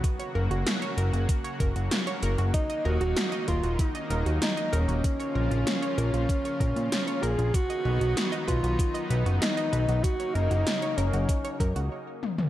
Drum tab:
HH |xx-xxxxxxxxxxxxx|xx-xxxxxxxxxxxxx|xx-xxxxxxxxxxxxx|xx-xxxxxxxxxxxxx|
SD |----o-------o---|----o-------o---|----o-------o---|----o-------o---|
T1 |----------------|----------------|----------------|----------------|
T2 |----------------|----------------|----------------|----------------|
BD |o-------o-o-----|o-----o-o-------|o-------o-o-----|o-----o-o-------|

HH |xxxxxxxxxxxx----|
SD |----o-----------|
T1 |--------------o-|
T2 |---------------o|
BD |o-------o-o-----|